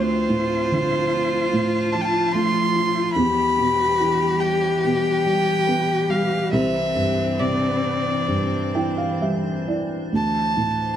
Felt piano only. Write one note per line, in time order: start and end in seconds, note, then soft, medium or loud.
0.00 3.12 D2 medium
0.29 1.52 A2 soft
0.72 2.30 D3 soft
1.53 3.11 A2 medium
1.95 2.74 F3 medium
2.34 3.13 A3 medium
2.75 3.15 F3 medium
3.16 6.49 E2 medium
3.58 4.83 B2 medium
4.00 5.64 E3 medium
4.84 6.49 B2 medium
5.25 6.08 G3 medium
5.67 6.50 B3 medium
6.09 6.51 G3 medium
6.52 10.10 C2 medium
6.95 8.27 G2 soft
7.39 9.18 C3 soft
8.28 10.10 G2 soft
8.75 9.66 E3 soft
8.75 8.97 G5 medium
8.98 9.20 F5 medium
9.21 10.11 G3 soft
9.21 9.66 E5 medium
9.68 10.12 E3 soft
9.68 10.10 D5 medium
10.12 10.97 D2 medium
10.57 10.97 A2 soft